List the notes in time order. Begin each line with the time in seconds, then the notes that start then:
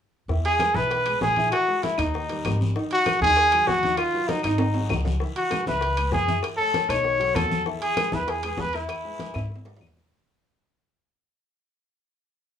0.28 E2 E3 E4 E5, high bongo, high conga, long guiro
0.45 G#4, high conga, high timbale
0.59 G#3 B4, high bongo, high conga, high timbale, short guiro, claves
0.74 B1 E3 E4 B4 E5, high conga, short guiro
0.91 high bongo, high conga, high timbale, long guiro
1.06 G#3 G#4 B4, high conga, high timbale, claves
1.21 A#1 G#4, high bongo, low bongo, high conga, low timbale, short guiro
1.36 E3 E4 E5, high conga, high timbale, short guiro
1.52 F#4, high bongo, high conga, high timbale, long guiro, claves
1.67 G#3 G#4 A#4, high conga
1.83 G#3 E4 G#4 A#4, high bongo, high conga, high timbale, short guiro
1.97 D#2 D#3 D#4 D#5, high bongo, high conga, high timbale, short guiro, claves
2.14 high bongo, high conga, long guiro
2.29 G3 G4 A#4, high bongo, high conga, high timbale
2.45 G#1 G3 G4 A#4, high bongo, low bongo, high conga, high timbale, short guiro, claves
2.61 high bongo, high conga, short guiro
2.76 D#3 D#4 D#5, high bongo, high conga, long guiro
2.91 F#4, high conga, high timbale
3.06 F#3 F#4 G#4, high bongo, high conga, high timbale, short guiro, claves
3.21 D#2 D#3 D#4 G#4 D#5, high conga, short guiro
3.36 high bongo, high timbale, long guiro
3.52 F#3 F#4 G#4, high conga, high timbale, claves
3.67 D#2 F#4, high bongo, low bongo, high conga, short guiro
3.83 D#3 D#4 D#5, high conga, high timbale, short guiro
3.97 F4, high bongo, high conga, high timbale, long guiro, claves
4.14 F#3 F#4 A#4, high conga
4.28 F#3 D#4 F#4 A#4, high bongo, high conga, high timbale, short guiro
4.43 G#1 D#3 D#4 D#5, high bongo, high conga, high timbale, short guiro, claves
4.58 high bongo, high conga, high timbale, long guiro
4.74 F#3 F#4 G#4, high bongo, high conga, high timbale
4.89 C#2 F#3 F#4 G#4, high bongo, low bongo, high conga, low timbale, short guiro, claves
5.05 high bongo, high conga, low timbale, short guiro
5.20 E3 E4 E5, high bongo, high conga, long guiro
5.36 F#4, high conga, high timbale
5.51 G#3 G#4 B4, high bongo, high conga, high timbale, short guiro, claves
5.66 C#2 E3 E4 B4 E5, high conga, short guiro
5.81 high bongo, high conga, high timbale, long guiro
5.97 G#3 G#4 B4, high conga, high timbale, claves
6.12 F#2 G#4, high bongo, low bongo, high conga, low timbale, short guiro
6.28 E3 E4 E5, high conga, high timbale, short guiro
6.43 high bongo, high conga, high timbale, long guiro, claves
6.57 A3 A4 C#5, high conga
6.74 A3 A4 C#5, high bongo, high conga, high timbale, short guiro
6.89 B1 D#3 D#4 C#5 D#5, high bongo, high conga, high timbale, short guiro, claves
7.04 high bongo, high conga, long guiro
7.20 F#3 F#4 A4, high bongo, high conga, high timbale
7.35 E2 F#3 F#4 A4, high bongo, low bongo, high conga, high timbale, short guiro, claves
7.50 high bongo, high conga, short guiro
7.66 E3 E4 E5, high bongo, high conga, long guiro
7.81 G#4, high conga, high timbale
7.97 G#3 G#4 B4, high bongo, high conga, high timbale, short guiro, claves
8.12 E2 E3 E4 B4 E5, high conga, short guiro
8.27 G#4, high bongo, high conga, high timbale, long guiro
8.43 G#3 G#4 B4, high conga, high timbale, claves
8.57 E2 B4, high bongo, low bongo, high conga, low timbale, short guiro
8.73 E3 E4 E5, high timbale, short guiro
8.89 high bongo, high conga, high timbale, long guiro, claves
9.04 G#3 G#4 B4, high conga
9.19 G#3 G#4 B4, high bongo, high conga, high timbale, short guiro
9.34 G#2 E3 E4 E5, high bongo, high conga, high timbale, short guiro, claves
9.50 high bongo, high conga, long guiro
9.56 high timbale
9.65 G#3 G#4 B4, high bongo, high conga, low timbale
9.77 low timbale
9.81 E2 G#3 G#4 B4, low bongo, high conga, short guiro, claves
9.87 low timbale
9.96 low bongo, high conga, short guiro
10.07 low timbale